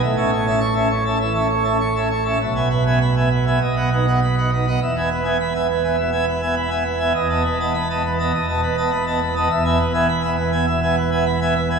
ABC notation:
X:1
M:4/4
L:1/16
Q:1/4=102
K:E
V:1 name="Pipe organ"
[A,,e] [Cea] c [Cea] c' [Cea] c [Cea] [E,e] [Cea] c [Cea] c' [Cea] c [Cea] | [B,,e] [B,eg] B [B,eg] b [B,eg] B [B,eg] [B,,d] [B,df] [DB] [B,df] b [B,df] [DB] [B,df] | [E,,e] [B,eg] B [B,eg] b [B,eg] B [B,eg] [B,,e] [B,eg] B [B,eg] b [B,eg] B [B,eg] | [E,,d] [B,da] B [B,da] b [B,da] B [B,da] [E,,d] [B,,da] B [B,da] b [B,da] B [B,da] |
[E,,e] [B,eg] B [B,eg] b [B,eg] B [B,eg] [B,,e] [B,eg] B [B,eg] b [B,eg] B [B,eg] |]
V:2 name="Pipe organ" clef=bass
A,,,16 | B,,,8 B,,,8 | E,,,16 | E,,,8 E,,,8 |
E,,,16 |]